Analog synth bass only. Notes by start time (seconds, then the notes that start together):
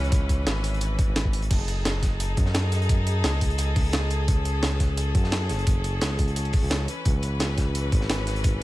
Already playing: C#2
0.47 G#1
1.08 G#1
1.51 F#1
2.37 F#2
3.24 C#2
3.76 C#2
4.63 C#2
5.15 F#2
5.50 F#1
6.01 C#2
6.63 C#2
7.06 C#2
7.92 G#1